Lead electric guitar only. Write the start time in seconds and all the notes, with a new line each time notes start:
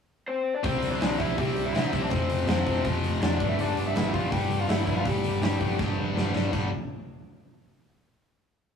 0.28 C4 C5
0.55 D4 D5
0.63 C4 C5
0.92 D4 D5
1.18 E4 E5
1.38 G4 G5
1.66 E4 E5
1.74 E4 E5
2.02 D4 D5
2.11 C4 C5
2.48 C4 C5
3.22 D4 D5
3.49 E4 E5
3.60 D4 D5
3.87 E4 E5
4.13 F4 F5
4.31 G4 G5
4.60 F4 F5
4.68 E4 E5
4.97 F4 F5
5.06 G4 G5
5.44 G4 G5